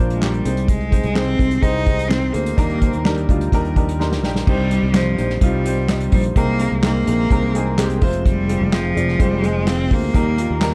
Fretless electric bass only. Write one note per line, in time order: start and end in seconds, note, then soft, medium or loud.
0.00 0.41 A#1 medium
0.46 1.00 C2 medium
1.04 1.37 C2 medium
1.39 1.61 C2 medium
1.62 2.30 C2 medium
2.35 2.56 D2 medium
2.58 2.91 D#2 loud
2.94 3.26 D#2 medium
3.29 3.51 D2 medium
3.52 4.24 D#2 medium
4.24 4.45 A#1 medium
4.48 4.80 C2 medium
4.83 5.15 C2 medium
5.19 5.40 A#1 medium
5.42 6.09 C2 medium
6.13 6.34 A#1 medium
6.36 6.69 C2 loud
6.72 7.05 C2 medium
7.08 7.29 A#1 medium
7.31 7.98 C2 medium
8.02 8.57 F1 medium
8.61 8.94 F1 medium
8.97 9.18 F1 medium
9.20 9.87 F1 loud
9.91 10.13 D2 medium
10.14 10.47 D#2 loud
10.50 10.74 D#2 medium